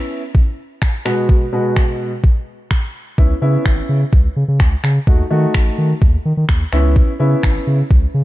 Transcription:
Already playing: B3 C#4 E4
0.35 kick
0.82 finger snap, kick
1.05 B2 G#3 B3 F#4, finger snap
1.29 kick
1.53 B2 G#3 B3 F#4
1.76 finger snap, kick
2.24 kick
2.71 finger snap, kick
3.18 C#2 B3 C#4 E4, kick
3.41 C#3 B3 C#4 E4
3.66 G#1, finger snap, kick
3.89 C#3
4.13 C#2, kick
4.36 C#3
4.48 C#3
4.60 C#2, finger snap, kick
4.84 C#3, finger snap
5.07 D#2 A3 D#4 F#4, kick
5.30 D#3 A3 D#4 F#4
5.54 A1, finger snap, kick
5.78 D#3
6.02 D#2, kick
6.25 D#3
6.37 D#3
6.49 D#2, finger snap, kick
6.72 C#2 B3 C#4 E4, finger snap
6.96 kick
7.19 C#3 B3 C#4 E4
7.43 G#1, finger snap, kick
7.67 C#3
7.91 C#2, kick
8.14 C#3

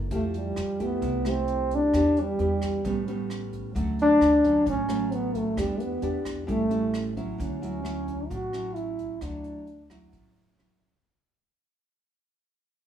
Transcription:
0.11 F2 F3 A3 E4 G4, kick, closed hi-hat
0.34 G3, closed hi-hat
0.56 F2, cross-stick, closed hi-hat
0.79 A3 B3 E4 G4, kick, closed hi-hat
1.02 C2 C3, kick, closed hi-hat
1.25 A3 E4 G4, cross-stick, closed hi-hat
1.29 C4
1.48 closed hi-hat
1.71 kick, closed hi-hat
1.75 D4
1.94 E2 E3 B3 D4 G4, kick, cross-stick, closed hi-hat
2.17 G3, closed hi-hat
2.39 E2 B3 D4 G4, closed hi-hat
2.62 kick, cross-stick, closed hi-hat
2.84 A1 A2 G3 B3 C#4, kick, closed hi-hat
3.08 G3 B3 C#4, closed hi-hat
3.30 cross-stick, closed hi-hat
3.53 kick, closed hi-hat
3.75 D2 D3 F#3 A3 C#4, kick, closed hi-hat
3.99 D4, closed hi-hat
4.21 D2, cross-stick, closed hi-hat
4.44 F#3 A3 C#4, kick, closed hi-hat
4.66 A1 A2 C#4, kick, closed hi-hat
4.89 F#3 A3 C#4, cross-stick, closed hi-hat
5.12 B3, closed hi-hat
5.35 A3, kick, closed hi-hat
5.57 E2 E3 G3 B3 D4 G4, kick, cross-stick, closed hi-hat
5.80 B3, closed hi-hat
6.02 E2 B3 D4 G4, closed hi-hat
6.25 kick, cross-stick, closed hi-hat
6.47 A1 A2 G3 A3 C#4 E4, kick, closed hi-hat
6.69 G3 C#4 E4, closed hi-hat
6.94 cross-stick, closed hi-hat
7.17 F#3 C#4 E4, kick, closed hi-hat
7.38 D2 D3 C#4, kick, closed hi-hat
7.62 F#3 C#4 E4, closed hi-hat
7.83 F#3 C#4 E4, cross-stick, closed hi-hat
8.08 kick, closed hi-hat
8.30 A1 A2 F#4, kick, closed hi-hat
8.53 F#3 C#4 E4, cross-stick, closed hi-hat
8.75 E4, closed hi-hat
8.99 kick, closed hi-hat
9.21 D2 D3 F#3 D4 E4, kick, cross-stick, closed hi-hat
9.44 closed hi-hat
9.67 closed hi-hat
9.90 F#3 C#4 E4, kick, cross-stick, closed hi-hat
10.13 A1 A2, kick, closed hi-hat
10.36 closed hi-hat
10.58 F#3 C#4 E4, cross-stick, closed hi-hat
10.81 kick, closed hi-hat

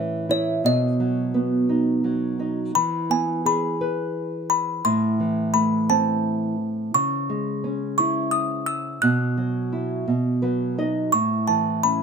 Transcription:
Already playing: A2 E3 C#4 E4 C#5
0.29 E4 C#5
0.64 B2 D#5
1.00 F#3
1.34 B3
1.69 D#4
2.04 F#3
2.39 D#4
2.75 E3 B5
3.09 B3 G#5
3.45 G#4 B5
3.81 B4
4.50 B5
4.85 A2 C6
5.20 E3
5.54 A3 B5
5.90 C4 A5
6.94 C#3 C#6
7.29 G#3
7.64 C#4
7.98 E4 C#6
8.31 D#6
8.66 E6
9.02 B2 F#6
9.37 F#3
9.72 E4
10.08 B2
10.42 F#3 B4
10.78 D#4 D#5
11.12 A2 C#6
11.48 E3 A5
11.83 C#4 B5

